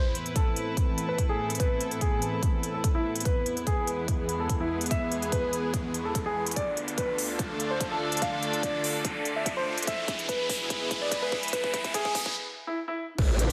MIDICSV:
0, 0, Header, 1, 8, 480
1, 0, Start_track
1, 0, Tempo, 413793
1, 1855, Time_signature, 4, 2, 24, 8
1, 15686, End_track
2, 0, Start_track
2, 0, Title_t, "Grand piano"
2, 0, Program_c, 0, 0
2, 0, Note_on_c, 0, 72, 92
2, 175, Note_off_c, 0, 72, 0
2, 414, Note_on_c, 0, 69, 89
2, 655, Note_off_c, 0, 69, 0
2, 1260, Note_on_c, 0, 71, 86
2, 1375, Note_off_c, 0, 71, 0
2, 1500, Note_on_c, 0, 68, 89
2, 1678, Note_off_c, 0, 68, 0
2, 1855, Note_on_c, 0, 71, 94
2, 2096, Note_off_c, 0, 71, 0
2, 2335, Note_on_c, 0, 68, 90
2, 2576, Note_off_c, 0, 68, 0
2, 3179, Note_on_c, 0, 69, 83
2, 3295, Note_off_c, 0, 69, 0
2, 3419, Note_on_c, 0, 64, 93
2, 3598, Note_off_c, 0, 64, 0
2, 3774, Note_on_c, 0, 71, 93
2, 4015, Note_off_c, 0, 71, 0
2, 4254, Note_on_c, 0, 68, 90
2, 4495, Note_off_c, 0, 68, 0
2, 5100, Note_on_c, 0, 69, 84
2, 5215, Note_off_c, 0, 69, 0
2, 5339, Note_on_c, 0, 64, 93
2, 5518, Note_off_c, 0, 64, 0
2, 5695, Note_on_c, 0, 76, 94
2, 5935, Note_off_c, 0, 76, 0
2, 6174, Note_on_c, 0, 71, 96
2, 6415, Note_off_c, 0, 71, 0
2, 7019, Note_on_c, 0, 69, 85
2, 7134, Note_off_c, 0, 69, 0
2, 7259, Note_on_c, 0, 68, 92
2, 7438, Note_off_c, 0, 68, 0
2, 7613, Note_on_c, 0, 74, 98
2, 7855, Note_off_c, 0, 74, 0
2, 8093, Note_on_c, 0, 71, 95
2, 8335, Note_off_c, 0, 71, 0
2, 8938, Note_on_c, 0, 72, 86
2, 9054, Note_off_c, 0, 72, 0
2, 9178, Note_on_c, 0, 69, 94
2, 9357, Note_off_c, 0, 69, 0
2, 9534, Note_on_c, 0, 77, 99
2, 9775, Note_off_c, 0, 77, 0
2, 10013, Note_on_c, 0, 74, 93
2, 10255, Note_off_c, 0, 74, 0
2, 10859, Note_on_c, 0, 76, 89
2, 10975, Note_off_c, 0, 76, 0
2, 11099, Note_on_c, 0, 72, 95
2, 11278, Note_off_c, 0, 72, 0
2, 11455, Note_on_c, 0, 76, 98
2, 11696, Note_off_c, 0, 76, 0
2, 11934, Note_on_c, 0, 71, 94
2, 12175, Note_off_c, 0, 71, 0
2, 12780, Note_on_c, 0, 74, 89
2, 12895, Note_off_c, 0, 74, 0
2, 13019, Note_on_c, 0, 71, 97
2, 13198, Note_off_c, 0, 71, 0
2, 13375, Note_on_c, 0, 71, 101
2, 13616, Note_off_c, 0, 71, 0
2, 13854, Note_on_c, 0, 68, 99
2, 14095, Note_off_c, 0, 68, 0
2, 14700, Note_on_c, 0, 64, 91
2, 14815, Note_off_c, 0, 64, 0
2, 14939, Note_on_c, 0, 64, 98
2, 15118, Note_off_c, 0, 64, 0
2, 15686, End_track
3, 0, Start_track
3, 0, Title_t, "String section"
3, 0, Program_c, 1, 48
3, 0, Note_on_c, 1, 64, 72
3, 0, Note_on_c, 1, 71, 80
3, 401, Note_on_c, 1, 69, 76
3, 3774, Note_on_c, 1, 59, 89
3, 3775, Note_off_c, 1, 69, 0
3, 4201, Note_on_c, 1, 68, 95
3, 7614, Note_off_c, 1, 64, 0
3, 7615, Note_off_c, 1, 68, 0
3, 7616, Note_on_c, 1, 62, 93
3, 7654, Note_on_c, 1, 65, 80
3, 7852, Note_on_c, 1, 69, 89
3, 8227, Note_on_c, 1, 74, 85
3, 8493, Note_off_c, 1, 59, 0
3, 8561, Note_off_c, 1, 71, 0
3, 11454, Note_off_c, 1, 65, 0
3, 11455, Note_off_c, 1, 69, 0
3, 11455, Note_on_c, 1, 64, 83
3, 11639, Note_on_c, 1, 68, 92
3, 12021, Note_on_c, 1, 71, 97
3, 12121, Note_off_c, 1, 74, 0
3, 12470, Note_on_c, 1, 76, 87
3, 12955, Note_off_c, 1, 62, 0
3, 14335, Note_off_c, 1, 64, 0
3, 14335, Note_off_c, 1, 68, 0
3, 14335, Note_off_c, 1, 71, 0
3, 14336, Note_off_c, 1, 76, 0
3, 15296, Note_on_c, 1, 62, 94
3, 15428, Note_on_c, 1, 67, 93
3, 15586, Note_on_c, 1, 72, 96
3, 15686, Note_off_c, 1, 62, 0
3, 15686, Note_off_c, 1, 67, 0
3, 15686, Note_off_c, 1, 72, 0
3, 15686, End_track
4, 0, Start_track
4, 0, Title_t, "Analog synth pad"
4, 0, Program_c, 2, 89
4, 0, Note_on_c, 2, 45, 82
4, 0, Note_on_c, 2, 52, 74
4, 0, Note_on_c, 2, 59, 75
4, 0, Note_on_c, 2, 60, 74
4, 0, Note_on_c, 2, 69, 93
4, 3736, Note_off_c, 2, 45, 0
4, 3736, Note_off_c, 2, 52, 0
4, 3736, Note_off_c, 2, 60, 0
4, 3736, Note_off_c, 2, 69, 0
4, 3774, Note_on_c, 2, 40, 83
4, 3774, Note_on_c, 2, 56, 78
4, 3774, Note_on_c, 2, 71, 91
4, 3775, Note_on_c, 2, 52, 76
4, 7568, Note_off_c, 2, 59, 0
4, 7576, Note_off_c, 2, 40, 0
4, 7576, Note_off_c, 2, 52, 0
4, 7576, Note_off_c, 2, 56, 0
4, 7576, Note_off_c, 2, 71, 0
4, 7614, Note_on_c, 2, 38, 85
4, 7614, Note_on_c, 2, 50, 75
4, 7614, Note_on_c, 2, 65, 78
4, 7614, Note_on_c, 2, 69, 91
4, 7615, Note_on_c, 2, 57, 75
4, 11416, Note_off_c, 2, 38, 0
4, 11416, Note_off_c, 2, 50, 0
4, 11416, Note_off_c, 2, 57, 0
4, 11416, Note_off_c, 2, 65, 0
4, 11416, Note_off_c, 2, 69, 0
4, 11454, Note_on_c, 2, 47, 76
4, 11454, Note_on_c, 2, 71, 94
4, 11455, Note_on_c, 2, 40, 87
4, 11455, Note_on_c, 2, 56, 78
4, 11455, Note_on_c, 2, 64, 78
4, 14306, Note_off_c, 2, 40, 0
4, 14306, Note_off_c, 2, 47, 0
4, 14306, Note_off_c, 2, 56, 0
4, 14306, Note_off_c, 2, 64, 0
4, 14306, Note_off_c, 2, 71, 0
4, 15686, End_track
5, 0, Start_track
5, 0, Title_t, "Wobble bass"
5, 0, Program_c, 3, 39
5, 15294, Note_on_c, 3, 33, 96
5, 15640, Note_off_c, 3, 33, 0
5, 15686, End_track
6, 0, Start_track
6, 0, Title_t, "Impact"
6, 0, Program_c, 4, 103
6, 15294, Note_on_c, 4, 60, 74
6, 15686, Note_off_c, 4, 60, 0
6, 15686, End_track
7, 0, Start_track
7, 0, Title_t, "Riser"
7, 0, Program_c, 5, 103
7, 0, Note_on_c, 5, 60, 78
7, 14334, Note_off_c, 5, 60, 0
7, 15686, End_track
8, 0, Start_track
8, 0, Title_t, "Drums"
8, 174, Note_on_c, 9, 42, 53
8, 290, Note_off_c, 9, 42, 0
8, 300, Note_on_c, 9, 42, 35
8, 414, Note_off_c, 9, 42, 0
8, 414, Note_on_c, 9, 36, 96
8, 414, Note_on_c, 9, 42, 81
8, 530, Note_off_c, 9, 36, 0
8, 530, Note_off_c, 9, 42, 0
8, 654, Note_on_c, 9, 42, 54
8, 770, Note_off_c, 9, 42, 0
8, 894, Note_on_c, 9, 36, 94
8, 894, Note_on_c, 9, 42, 80
8, 1010, Note_off_c, 9, 36, 0
8, 1010, Note_off_c, 9, 42, 0
8, 1135, Note_on_c, 9, 42, 54
8, 1251, Note_off_c, 9, 42, 0
8, 1374, Note_on_c, 9, 36, 97
8, 1374, Note_on_c, 9, 42, 78
8, 1490, Note_off_c, 9, 36, 0
8, 1490, Note_off_c, 9, 42, 0
8, 1740, Note_on_c, 9, 42, 50
8, 1797, Note_off_c, 9, 42, 0
8, 1797, Note_on_c, 9, 42, 65
8, 1854, Note_off_c, 9, 42, 0
8, 1854, Note_on_c, 9, 36, 100
8, 1854, Note_on_c, 9, 42, 79
8, 1970, Note_off_c, 9, 36, 0
8, 1970, Note_off_c, 9, 42, 0
8, 2094, Note_on_c, 9, 42, 55
8, 2210, Note_off_c, 9, 42, 0
8, 2220, Note_on_c, 9, 42, 37
8, 2334, Note_off_c, 9, 42, 0
8, 2334, Note_on_c, 9, 36, 95
8, 2334, Note_on_c, 9, 42, 83
8, 2450, Note_off_c, 9, 36, 0
8, 2450, Note_off_c, 9, 42, 0
8, 2574, Note_on_c, 9, 42, 54
8, 2690, Note_off_c, 9, 42, 0
8, 2814, Note_on_c, 9, 36, 93
8, 2815, Note_on_c, 9, 42, 80
8, 2930, Note_off_c, 9, 36, 0
8, 2931, Note_off_c, 9, 42, 0
8, 3055, Note_on_c, 9, 42, 54
8, 3171, Note_off_c, 9, 42, 0
8, 3294, Note_on_c, 9, 36, 99
8, 3295, Note_on_c, 9, 42, 80
8, 3410, Note_off_c, 9, 36, 0
8, 3411, Note_off_c, 9, 42, 0
8, 3660, Note_on_c, 9, 42, 49
8, 3717, Note_off_c, 9, 42, 0
8, 3717, Note_on_c, 9, 42, 67
8, 3774, Note_on_c, 9, 36, 100
8, 3775, Note_off_c, 9, 42, 0
8, 3775, Note_on_c, 9, 42, 80
8, 3890, Note_off_c, 9, 36, 0
8, 3891, Note_off_c, 9, 42, 0
8, 4015, Note_on_c, 9, 42, 55
8, 4131, Note_off_c, 9, 42, 0
8, 4140, Note_on_c, 9, 42, 35
8, 4254, Note_on_c, 9, 36, 97
8, 4255, Note_off_c, 9, 42, 0
8, 4255, Note_on_c, 9, 42, 83
8, 4370, Note_off_c, 9, 36, 0
8, 4371, Note_off_c, 9, 42, 0
8, 4494, Note_on_c, 9, 42, 55
8, 4610, Note_off_c, 9, 42, 0
8, 4734, Note_on_c, 9, 36, 94
8, 4735, Note_on_c, 9, 42, 79
8, 4850, Note_off_c, 9, 36, 0
8, 4851, Note_off_c, 9, 42, 0
8, 4974, Note_on_c, 9, 42, 54
8, 5090, Note_off_c, 9, 42, 0
8, 5214, Note_on_c, 9, 36, 97
8, 5214, Note_on_c, 9, 42, 79
8, 5330, Note_off_c, 9, 36, 0
8, 5330, Note_off_c, 9, 42, 0
8, 5580, Note_on_c, 9, 42, 51
8, 5637, Note_off_c, 9, 42, 0
8, 5637, Note_on_c, 9, 42, 66
8, 5694, Note_off_c, 9, 42, 0
8, 5694, Note_on_c, 9, 36, 99
8, 5694, Note_on_c, 9, 42, 74
8, 5810, Note_off_c, 9, 36, 0
8, 5810, Note_off_c, 9, 42, 0
8, 5934, Note_on_c, 9, 42, 51
8, 6050, Note_off_c, 9, 42, 0
8, 6060, Note_on_c, 9, 42, 34
8, 6174, Note_off_c, 9, 42, 0
8, 6174, Note_on_c, 9, 36, 98
8, 6174, Note_on_c, 9, 42, 79
8, 6290, Note_off_c, 9, 36, 0
8, 6290, Note_off_c, 9, 42, 0
8, 6414, Note_on_c, 9, 42, 50
8, 6530, Note_off_c, 9, 42, 0
8, 6654, Note_on_c, 9, 36, 94
8, 6654, Note_on_c, 9, 42, 75
8, 6770, Note_off_c, 9, 36, 0
8, 6770, Note_off_c, 9, 42, 0
8, 6894, Note_on_c, 9, 42, 50
8, 7010, Note_off_c, 9, 42, 0
8, 7134, Note_on_c, 9, 36, 102
8, 7134, Note_on_c, 9, 42, 79
8, 7250, Note_off_c, 9, 36, 0
8, 7250, Note_off_c, 9, 42, 0
8, 7500, Note_on_c, 9, 42, 49
8, 7557, Note_off_c, 9, 42, 0
8, 7557, Note_on_c, 9, 42, 61
8, 7614, Note_off_c, 9, 42, 0
8, 7614, Note_on_c, 9, 36, 105
8, 7614, Note_on_c, 9, 42, 77
8, 7730, Note_off_c, 9, 36, 0
8, 7730, Note_off_c, 9, 42, 0
8, 7854, Note_on_c, 9, 42, 51
8, 7970, Note_off_c, 9, 42, 0
8, 7980, Note_on_c, 9, 42, 33
8, 8094, Note_off_c, 9, 42, 0
8, 8094, Note_on_c, 9, 36, 103
8, 8094, Note_on_c, 9, 42, 78
8, 8210, Note_off_c, 9, 36, 0
8, 8210, Note_off_c, 9, 42, 0
8, 8334, Note_on_c, 9, 46, 92
8, 8450, Note_off_c, 9, 46, 0
8, 8574, Note_on_c, 9, 36, 102
8, 8574, Note_on_c, 9, 42, 70
8, 8690, Note_off_c, 9, 36, 0
8, 8690, Note_off_c, 9, 42, 0
8, 8814, Note_on_c, 9, 42, 50
8, 8930, Note_off_c, 9, 42, 0
8, 9054, Note_on_c, 9, 36, 108
8, 9054, Note_on_c, 9, 42, 76
8, 9170, Note_off_c, 9, 36, 0
8, 9170, Note_off_c, 9, 42, 0
8, 9420, Note_on_c, 9, 42, 47
8, 9477, Note_off_c, 9, 42, 0
8, 9477, Note_on_c, 9, 42, 60
8, 9534, Note_off_c, 9, 42, 0
8, 9534, Note_on_c, 9, 36, 106
8, 9534, Note_on_c, 9, 42, 77
8, 9650, Note_off_c, 9, 36, 0
8, 9650, Note_off_c, 9, 42, 0
8, 9774, Note_on_c, 9, 42, 51
8, 9890, Note_off_c, 9, 42, 0
8, 9899, Note_on_c, 9, 42, 34
8, 10014, Note_off_c, 9, 42, 0
8, 10014, Note_on_c, 9, 36, 101
8, 10014, Note_on_c, 9, 42, 75
8, 10130, Note_off_c, 9, 36, 0
8, 10130, Note_off_c, 9, 42, 0
8, 10254, Note_on_c, 9, 46, 93
8, 10370, Note_off_c, 9, 46, 0
8, 10494, Note_on_c, 9, 36, 103
8, 10494, Note_on_c, 9, 42, 76
8, 10610, Note_off_c, 9, 36, 0
8, 10610, Note_off_c, 9, 42, 0
8, 10734, Note_on_c, 9, 42, 51
8, 10850, Note_off_c, 9, 42, 0
8, 10974, Note_on_c, 9, 36, 106
8, 10975, Note_on_c, 9, 42, 76
8, 11090, Note_off_c, 9, 36, 0
8, 11091, Note_off_c, 9, 42, 0
8, 11340, Note_on_c, 9, 42, 48
8, 11397, Note_off_c, 9, 42, 0
8, 11397, Note_on_c, 9, 42, 63
8, 11454, Note_off_c, 9, 42, 0
8, 11454, Note_on_c, 9, 36, 107
8, 11454, Note_on_c, 9, 42, 79
8, 11570, Note_off_c, 9, 36, 0
8, 11570, Note_off_c, 9, 42, 0
8, 11694, Note_on_c, 9, 36, 106
8, 11695, Note_on_c, 9, 42, 52
8, 11810, Note_off_c, 9, 36, 0
8, 11811, Note_off_c, 9, 42, 0
8, 11820, Note_on_c, 9, 42, 36
8, 11934, Note_on_c, 9, 36, 105
8, 11935, Note_off_c, 9, 42, 0
8, 11935, Note_on_c, 9, 42, 79
8, 12050, Note_off_c, 9, 36, 0
8, 12051, Note_off_c, 9, 42, 0
8, 12174, Note_on_c, 9, 36, 104
8, 12175, Note_on_c, 9, 46, 96
8, 12290, Note_off_c, 9, 36, 0
8, 12291, Note_off_c, 9, 46, 0
8, 12414, Note_on_c, 9, 36, 102
8, 12415, Note_on_c, 9, 42, 75
8, 12530, Note_off_c, 9, 36, 0
8, 12531, Note_off_c, 9, 42, 0
8, 12654, Note_on_c, 9, 36, 103
8, 12654, Note_on_c, 9, 42, 53
8, 12770, Note_off_c, 9, 36, 0
8, 12770, Note_off_c, 9, 42, 0
8, 12894, Note_on_c, 9, 36, 109
8, 12895, Note_on_c, 9, 42, 78
8, 13010, Note_off_c, 9, 36, 0
8, 13011, Note_off_c, 9, 42, 0
8, 13134, Note_on_c, 9, 36, 109
8, 13250, Note_off_c, 9, 36, 0
8, 13260, Note_on_c, 9, 42, 49
8, 13317, Note_off_c, 9, 42, 0
8, 13317, Note_on_c, 9, 42, 65
8, 13374, Note_on_c, 9, 36, 110
8, 13375, Note_off_c, 9, 42, 0
8, 13375, Note_on_c, 9, 42, 80
8, 13490, Note_off_c, 9, 36, 0
8, 13491, Note_off_c, 9, 42, 0
8, 13500, Note_on_c, 9, 36, 93
8, 13614, Note_off_c, 9, 36, 0
8, 13614, Note_on_c, 9, 36, 107
8, 13615, Note_on_c, 9, 42, 56
8, 13730, Note_off_c, 9, 36, 0
8, 13731, Note_off_c, 9, 42, 0
8, 13740, Note_on_c, 9, 36, 95
8, 13740, Note_on_c, 9, 42, 36
8, 13854, Note_off_c, 9, 36, 0
8, 13854, Note_off_c, 9, 42, 0
8, 13854, Note_on_c, 9, 36, 103
8, 13854, Note_on_c, 9, 42, 84
8, 13970, Note_off_c, 9, 36, 0
8, 13970, Note_off_c, 9, 42, 0
8, 13980, Note_on_c, 9, 36, 96
8, 14094, Note_off_c, 9, 36, 0
8, 14094, Note_on_c, 9, 36, 108
8, 14094, Note_on_c, 9, 46, 101
8, 14210, Note_off_c, 9, 36, 0
8, 14210, Note_off_c, 9, 46, 0
8, 14220, Note_on_c, 9, 36, 94
8, 14336, Note_off_c, 9, 36, 0
8, 15294, Note_on_c, 9, 36, 123
8, 15294, Note_on_c, 9, 49, 104
8, 15410, Note_off_c, 9, 36, 0
8, 15410, Note_off_c, 9, 49, 0
8, 15534, Note_on_c, 9, 42, 88
8, 15650, Note_off_c, 9, 42, 0
8, 15686, End_track
0, 0, End_of_file